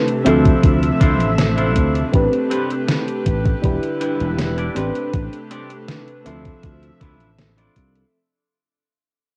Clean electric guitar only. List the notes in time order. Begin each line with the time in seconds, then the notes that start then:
0.07 muted clean electric guitar stroke
0.25 D4 E4 F4 C5
1.00 D4 E4 F4 C5
1.57 D4 E4 F4 C5
2.50 C4 D4 G4 B4
2.88 muted clean electric guitar stroke
3.07 muted clean electric guitar stroke
3.45 muted clean electric guitar stroke
4.01 D4 E4 G4 B4
4.57 D4 E4 G4 D5
4.76 C4 D4 G4 B4
5.51 C4 D4 G4 D5
5.88 muted clean electric guitar stroke
6.08 muted clean electric guitar stroke
6.26 D4 E4 F4 C5
7.00 D4 E4 F4 B4
7.57 D4 E4 F4 D5